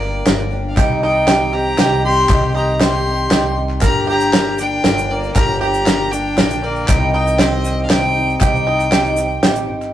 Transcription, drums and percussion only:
0.01 clap soft
0.27 snare medium
0.27 clap medium
0.27 closed hi-hat medium
0.77 kick loud
0.77 clap medium
0.77 closed hi-hat medium
1.27 snare medium
1.27 clap medium
1.27 closed hi-hat medium
1.54 clap soft
1.79 snare medium
1.79 clap medium
1.79 closed hi-hat medium
2.29 kick loud
2.29 clap loud
2.29 closed hi-hat medium
2.42 clap soft
2.81 snare medium
2.81 clap medium
2.81 closed hi-hat medium
2.93 clap soft
3.31 snare medium
3.31 clap medium
3.31 closed hi-hat medium
3.69 clap soft
3.81 kick loud
3.81 clap medium
3.81 closed hi-hat medium
3.81 shaker medium
4.20 shaker medium
4.33 snare medium
4.33 clap medium
4.33 closed hi-hat medium
4.58 clap soft
4.58 shaker medium
4.84 snare medium
4.84 clap medium
4.84 closed hi-hat medium
4.98 shaker medium
5.24 shaker soft
5.35 kick loud
5.35 clap medium
5.35 closed hi-hat medium
5.35 shaker medium
5.74 shaker medium
5.86 snare medium
5.86 clap medium
5.86 closed hi-hat medium
6.12 clap soft
6.12 shaker medium
6.38 snare medium
6.38 clap medium
6.38 closed hi-hat medium
6.50 shaker medium
6.76 shaker soft
6.88 kick loud
6.88 clap loud
6.88 closed hi-hat medium
6.88 shaker loud
7.27 shaker medium
7.39 snare medium
7.39 clap loud
7.39 closed hi-hat medium
7.65 clap soft
7.65 shaker medium
7.90 snare medium
7.90 clap medium
7.90 closed hi-hat medium
8.30 shaker soft
8.41 kick loud
8.41 clap medium
8.41 closed hi-hat medium
8.41 shaker medium
8.55 shaker soft
8.80 clap soft
8.80 shaker medium
8.92 snare medium
8.92 clap loud
8.92 closed hi-hat medium
8.92 shaker soft
9.05 clap soft
9.05 shaker soft
9.16 clap soft
9.16 shaker loud
9.43 snare medium
9.43 clap medium
9.43 closed hi-hat medium
9.55 shaker medium
9.81 clap soft
9.81 shaker soft

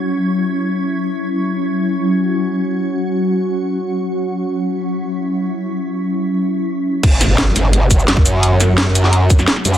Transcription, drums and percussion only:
7.03 kick loud
7.03 closed hi-hat medium
7.03 crash loud
7.21 snare soft
7.21 closed hi-hat loud
7.21 shaker medium
7.38 snare loud
7.38 closed hi-hat medium
7.56 snare soft
7.56 closed hi-hat loud
7.56 shaker medium
7.73 closed hi-hat medium
7.91 kick medium
7.91 closed hi-hat medium
7.91 shaker medium
7.99 shaker soft
8.08 snare loud
8.08 closed hi-hat medium
8.17 kick loud
8.26 closed hi-hat medium
8.26 shaker medium
8.43 closed hi-hat medium
8.60 snare soft
8.60 closed hi-hat medium
8.60 shaker medium
8.78 snare loud
8.78 closed hi-hat medium
8.95 closed hi-hat loud
8.95 shaker medium
9.04 snare soft
9.13 closed hi-hat medium
9.30 kick loud
9.30 closed hi-hat medium
9.30 shaker medium
9.39 snare soft
9.39 shaker soft
9.48 snare loud
9.48 closed hi-hat medium
9.56 snare soft
9.65 closed hi-hat medium
9.65 shaker medium
9.74 shaker soft

